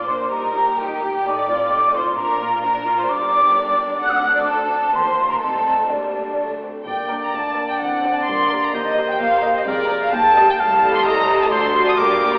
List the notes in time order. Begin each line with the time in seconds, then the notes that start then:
Already playing: A#1 A#2
0.06 A#3 D4 A#4 C5 C6
0.30 G3 D#4 A#4 A#5
0.54 A#3 G4
0.77 G3 D#4 G4 A#4 G5
1.01 A#3 G4
1.25 A1 A2 A3 D#4 A4 D5 D6
1.48 C4 F4
1.71 A3 D#4 A4
1.93 C4 F4 C5 C6
2.16 A#1 A#2 F3 D4 A#4 A#5
2.40 A#3 F4
2.62 F3 D4 A#4 A#5
2.85 A#3 F4
2.98 C5 C6
3.09 G1 G2 A#3 D4 G4 D5 D6
4.02 D2 C4 A4 F#5 F#6
4.09 D#6
4.17 F#6
4.36 D5 D6
4.47 A4 A5
4.94 D#2 A#3 G4 C5 C6
5.18 F4
5.30 A#4 A#5
5.40 C2 A3 C4 D#4 A4 A5
5.90 D2 G3 A#3 D4 D5
6.38 F#3 A3 D4
6.63 C4
6.86 G1 G2 A#3 D4 D5 G5
7.10 A#3 D4 A#4 D5
7.22 A#5
7.33 D2 A5
7.56 A#3 D4 A#4 D5
7.70 G5
7.81 A1 A2 C4 F#5
8.02 C4 D4 A4 D5
8.16 A5
8.26 G1 G2 A#3 C6
8.50 A#3 G4 A#4 D5
8.63 A#5
8.73 D#2 G4 C5 D#5
8.96 A#3 G4 A#4 D#5
9.08 G5
9.20 A#1 A#2 F5
9.43 A#3 G4 A#4 D#5
9.55 D#5
9.67 F1 F2 G#4 A#4 D5
9.89 A#3 G#4 A#4
10.01 F5
10.13 D#2 A#3 G4 G5 A5
10.36 G3 G4 A#4 D#5
10.48 G5
10.60 C2 A3 F5 A5
10.83 A3 G4 A4 D#5
10.93 C6
11.05 C2 D#5 A#5
11.29 A3 G4 A4 D#5
11.38 A5
11.51 D2 A3 F#4 A4 C5 D5 C6
11.75 A3 F#4 A4 D5
11.86 D#6
11.96 G1 G2 A#3 G4 A#4 D5 D6
12.21 A#3 G4 D5
12.32 A#5